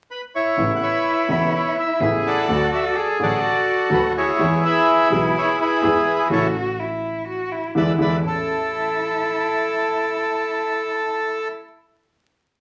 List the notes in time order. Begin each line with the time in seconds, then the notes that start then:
0.11 B4
0.35 E4 C#5
0.57 A1 A2 C#3 A3 B3 E4
0.76 F#5
0.83 B4 C#5 E5
1.28 E1 E2 C#3 A3 B3 E4 E5
1.55 E4 C#5
1.79 E5
2.00 A1 A2 C#3 A3 B3 E4 G#4 E5
2.27 A4 D5 F#5
2.48 D2 D3 F#3 A3 F#4
2.75 E5
2.96 G#4 D5
3.19 A1 A2 D3 F#3 A3 F#4 A4 D5
3.23 F#4
3.44 F#4
3.89 D2 D3 F#3 A3 F#4
3.93 B4
4.17 E4 G#4 C#5
4.38 E2 E3 G#3 B3 E4 G#4
4.65 G#4 B4 E5
5.10 B1 B2 E3 G#3 B3 G#4 E5
5.38 E4 G#4 C#5
5.61 E4 G#4 B4
5.82 E2 E3 G#3 B3 G#4
6.29 A1 C#3 E3 A3 E4 F#4 A4 C#5
6.80 E4
7.28 F#4
7.52 E4
7.75 E2 D3 E3 G#3 E4 B4 D5 E5
7.98 E2 D3 E3 G#3 B4 D5 E5
8.22 A1 C#4 E4 A4
8.27 A4